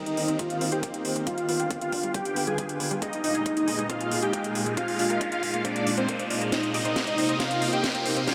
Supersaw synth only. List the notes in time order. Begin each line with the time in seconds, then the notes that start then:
0.06 D#4 D#5
0.39 F4 F5
0.72 G4 G5
1.27 F4 F5
1.49 F4 F5
1.82 F4 F5
2.14 G4 G5
2.47 G#4 G#5
3.02 D#4 D#5
3.24 D#4 D#5
3.57 D#4 D#5
3.90 F4 F5
4.22 G4 G5
4.77 F4 F5
4.99 F4 F5
5.32 F4 F5
5.65 D4 D5
5.98 C4 C5
6.52 D#4 D#5
6.74 D#4 D#5
7.07 D#4 D#5
7.40 F4 F5
7.73 G4 G5
8.28 F4 F5